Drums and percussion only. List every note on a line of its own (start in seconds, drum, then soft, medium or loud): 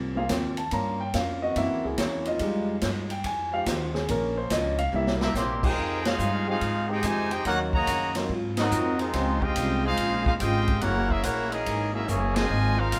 0.29 kick soft
0.29 snare medium
0.29 hi-hat pedal medium
0.29 ride medium
0.57 ride medium
0.71 kick soft
0.71 ride medium
1.14 kick soft
1.14 snare medium
1.14 hi-hat pedal soft
1.14 ride medium
1.56 kick soft
1.56 ride medium
1.98 kick soft
1.98 snare medium
1.98 hi-hat pedal medium
1.98 ride medium
2.25 ride medium
2.39 kick soft
2.39 ride medium
2.81 kick soft
2.81 snare medium
2.81 hi-hat pedal medium
2.81 ride medium
3.10 ride medium
3.24 kick soft
3.24 ride medium
3.66 kick soft
3.66 snare medium
3.66 hi-hat pedal medium
3.66 ride medium
3.95 snare medium
4.08 kick soft
4.08 ride medium
4.50 kick soft
4.50 snare medium
4.50 hi-hat pedal medium
4.50 ride medium
4.78 ride medium
5.07 snare medium
5.21 snare loud
5.35 snare medium
5.35 hi-hat pedal medium
5.63 kick medium
5.63 crash medium
5.77 kick soft
6.05 snare loud
6.05 ride medium
6.19 hi-hat pedal medium
6.61 kick soft
6.61 ride medium
7.03 kick soft
7.03 hi-hat pedal medium
7.03 ride medium
7.31 ride medium
7.45 kick soft
7.45 ride medium
7.73 kick medium
7.87 kick soft
7.87 hi-hat pedal medium
7.87 ride medium
8.15 snare medium
8.15 ride medium
8.29 kick soft
8.57 snare medium
8.57 ride medium
8.71 hi-hat pedal medium
8.99 ride medium
9.13 kick soft
9.13 snare soft
9.13 ride medium
9.42 kick medium
9.56 kick soft
9.56 hi-hat pedal medium
9.56 ride medium
9.97 kick soft
9.97 ride medium
10.26 kick medium
10.40 kick soft
10.40 hi-hat pedal medium
10.40 ride medium
10.68 kick medium
10.68 ride medium
10.81 kick soft
10.81 ride medium
11.10 kick medium
11.23 kick soft
11.23 hi-hat pedal medium
11.23 ride medium
11.52 ride medium
11.66 kick soft
11.66 ride medium
12.08 hi-hat pedal medium
12.36 snare medium
12.36 ride medium
12.92 kick soft
12.92 hi-hat pedal medium
12.92 ride medium